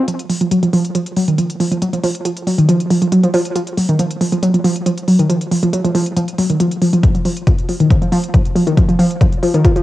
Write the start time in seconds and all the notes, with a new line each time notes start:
0.08 F3, closed hi-hat
0.19 closed hi-hat
0.30 F3, open hi-hat
0.41 F3, closed hi-hat
0.51 F#3, closed hi-hat
0.63 F3, closed hi-hat
0.73 F3, open hi-hat
0.85 closed hi-hat
0.95 F3, closed hi-hat
1.06 closed hi-hat
1.17 F#3, open hi-hat
1.28 D#3, closed hi-hat
1.38 F3, closed hi-hat
1.50 closed hi-hat
1.60 F3, open hi-hat
1.71 F3, closed hi-hat
1.82 F#3, closed hi-hat
1.93 F3, closed hi-hat
2.04 F3, open hi-hat
2.15 closed hi-hat
2.25 F3, closed hi-hat
2.37 closed hi-hat
2.47 F#3, open hi-hat
2.58 D#3, closed hi-hat
2.69 F3, closed hi-hat
2.80 closed hi-hat
2.90 F3, open hi-hat
3.02 F3, closed hi-hat
3.12 F#3, closed hi-hat
3.24 F3, closed hi-hat
3.34 F3, open hi-hat
3.45 closed hi-hat
3.56 F3, closed hi-hat
3.67 closed hi-hat
3.77 F#3, open hi-hat
3.89 D#3, closed hi-hat
3.99 F3, closed hi-hat
4.11 closed hi-hat
4.21 F3, open hi-hat
4.32 F3, closed hi-hat
4.43 F#3, closed hi-hat
4.54 F3, closed hi-hat
4.64 F3, open hi-hat
4.76 closed hi-hat
4.86 F3, closed hi-hat
4.98 closed hi-hat
5.08 F#3, open hi-hat
5.19 D#3, closed hi-hat
5.30 F3, closed hi-hat
5.41 closed hi-hat
5.51 F3, open hi-hat
5.63 F3, closed hi-hat
5.73 F#3, closed hi-hat
5.84 F3, closed hi-hat
5.95 F3, open hi-hat
6.06 closed hi-hat
6.16 F3, closed hi-hat
6.28 closed hi-hat
6.38 F#3, open hi-hat
6.50 D#3, closed hi-hat
6.60 F3, closed hi-hat
6.71 closed hi-hat
6.82 F3, open hi-hat
6.93 F3, closed hi-hat
7.03 F3, kick, closed hi-hat
7.15 F3, closed hi-hat
7.25 F3, open hi-hat
7.37 closed hi-hat
7.47 F3, kick, closed hi-hat
7.58 closed hi-hat
7.69 F3, open hi-hat
7.80 D#3, closed hi-hat
7.90 F3, kick, closed hi-hat
8.02 F3, closed hi-hat
8.12 F3, open hi-hat
8.24 closed hi-hat
8.34 F3, kick, closed hi-hat
8.45 closed hi-hat
8.56 F3, open hi-hat
8.67 D#3, closed hi-hat
8.77 F3, kick, closed hi-hat
8.89 F3, closed hi-hat
8.99 F3, open hi-hat
9.11 closed hi-hat
9.21 F3, kick, closed hi-hat
9.32 closed hi-hat
9.43 F3, open hi-hat
9.54 D#3, closed hi-hat
9.64 F3, kick, closed hi-hat
9.76 F3, closed hi-hat